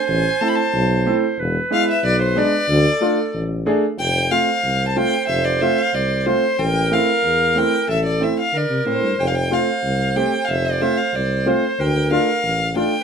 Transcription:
0.00 1.40 C5 loud
0.08 0.28 A1 loud
0.08 0.42 G#5 medium
0.41 0.57 A3 medium
0.41 0.58 C4 medium
0.41 0.58 E4 medium
0.41 0.50 A5 medium
0.49 0.57 B5 medium
0.55 1.06 A5 medium
0.74 1.13 B1 medium
1.06 1.22 A3 medium
1.06 1.23 C4 medium
1.06 1.23 E4 medium
1.38 1.58 E1 medium
1.38 2.68 B4 medium
1.71 1.87 G#3 medium
1.71 1.87 B3 medium
1.71 1.88 E4 medium
1.71 1.87 F5 loud
1.91 2.04 E5 medium
2.04 2.43 B1 medium
2.04 2.20 D5 loud
2.22 2.39 C5 medium
2.36 2.52 G#3 medium
2.36 2.53 B3 medium
2.36 2.53 D4 medium
2.36 3.35 D5 loud
2.69 2.88 D2 loud
2.69 3.62 A4 medium
3.01 3.17 A3 medium
3.01 3.17 D4 medium
3.01 3.18 F4 medium
3.34 3.73 A1 medium
3.66 3.82 A3 medium
3.66 3.83 D4 medium
3.66 3.83 G#4 medium
3.98 4.38 F1 loud
3.98 6.55 C5 loud
3.98 4.33 G5 loud
4.31 4.48 A3 medium
4.31 4.48 C4 soft
4.31 4.48 F4 medium
4.31 4.88 F5 medium
4.63 5.02 C2 medium
4.88 4.98 A5 medium
4.96 5.12 A3 medium
4.96 5.12 C4 medium
4.96 5.13 F4 medium
4.96 5.28 G5 loud
5.28 5.68 F1 loud
5.28 5.46 E5 medium
5.45 5.63 D5 medium
5.61 5.78 A3 medium
5.61 5.78 C4 medium
5.61 5.78 F4 medium
5.61 5.80 E5 medium
5.78 5.96 F5 medium
5.93 6.33 C2 medium
5.93 6.20 D5 medium
6.20 6.28 D5 medium
6.26 6.42 A3 medium
6.26 6.43 C4 medium
6.26 6.43 F4 medium
6.26 6.61 C5 medium
6.58 6.97 A1 loud
6.58 7.90 A#4 loud
6.58 6.94 G5 loud
6.91 7.08 A3 medium
6.91 7.08 C4 medium
6.91 7.08 E4 medium
6.91 7.60 F5 medium
7.23 7.63 E2 medium
7.55 7.72 A3 medium
7.55 7.72 C4 medium
7.55 7.73 E4 medium
7.55 7.90 G5 loud
7.88 8.28 A1 medium
7.88 8.27 A4 medium
7.88 8.05 E5 medium
8.06 8.25 D5 medium
8.20 8.37 A3 medium
8.20 8.37 C4 medium
8.20 8.38 E4 medium
8.20 8.39 E5 medium
8.40 8.58 F5 medium
8.54 8.68 D3 medium
8.54 9.15 A#4 medium
8.54 8.88 D5 medium
8.70 8.85 C3 medium
8.85 9.01 A2 medium
8.85 9.03 A3 medium
8.85 9.03 C4 medium
8.85 9.03 E4 medium
8.85 9.22 C5 medium
9.02 9.17 G2 medium
9.18 9.57 F1 loud
9.18 11.81 C5 medium
9.18 9.29 G5 medium
9.27 9.37 F5 medium
9.35 9.55 G5 medium
9.51 9.67 A3 medium
9.51 9.67 C4 soft
9.51 9.68 F4 medium
9.51 10.18 F5 medium
9.84 10.23 C2 medium
10.16 10.32 A3 medium
10.16 10.33 C4 medium
10.16 10.33 G4 medium
10.16 10.46 G5 medium
10.45 10.50 F5 medium
10.49 10.88 F1 medium
10.49 10.67 E5 medium
10.65 10.83 D5 medium
10.81 10.98 A3 medium
10.81 10.98 C4 medium
10.81 10.98 F4 medium
10.81 10.99 E5 medium
10.97 11.17 F5 medium
11.14 11.53 C2 medium
11.14 11.49 D5 medium
11.46 11.62 A3 medium
11.46 11.62 C4 medium
11.46 11.63 F4 medium
11.46 11.82 C5 medium
11.79 12.18 D2 loud
11.79 12.82 A#4 loud
11.79 12.12 G5 medium
12.11 12.27 A3 medium
12.11 12.27 D4 medium
12.11 12.28 F4 medium
12.11 12.73 F5 medium
12.44 12.83 A1 medium
12.75 12.92 A3 medium
12.75 12.92 D4 soft
12.75 12.92 F4 medium
12.75 13.04 G5 loud

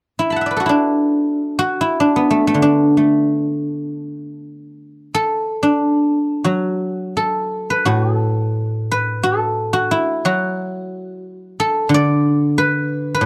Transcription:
0.19 0.65 E4 soft
0.30 1.77 A5 soft
0.30 1.65 B5 soft
0.36 1.97 F#5 soft
0.41 2.13 E5 soft
0.46 2.31 D5 soft
0.51 2.55 B4 soft
0.57 1.58 F#4 soft
0.57 2.76 A4 soft
0.66 2.00 D4 medium
0.66 1.80 E4 soft
1.59 4.02 F#4 medium
1.81 4.42 E4 medium
2.00 2.62 D4 medium
2.16 5.26 B3 soft
2.31 2.47 A3 soft
2.47 2.97 A3 medium
2.54 5.10 D3 soft
2.62 5.42 D4 medium
2.97 4.67 A3 soft
5.14 7.16 A4 medium
5.63 8.43 D4 medium
6.44 8.55 F#3 soft
6.44 7.85 F#4 soft
7.17 7.85 A4 medium
7.70 8.91 B4 medium
7.85 9.91 A2 soft
7.85 8.16 F#4 medium
8.16 9.23 A4 medium
8.91 10.96 B4 medium
9.23 11.43 A4 medium
9.73 10.25 F#4 medium
9.91 12.52 E4 medium
10.25 12.23 F#3 soft
10.25 12.68 F#4 medium
11.60 13.25 A4 medium
11.89 13.26 D3 medium
11.94 13.26 D5 medium
12.58 13.14 B4 medium
13.15 13.26 B4 medium
13.21 13.26 A2 soft

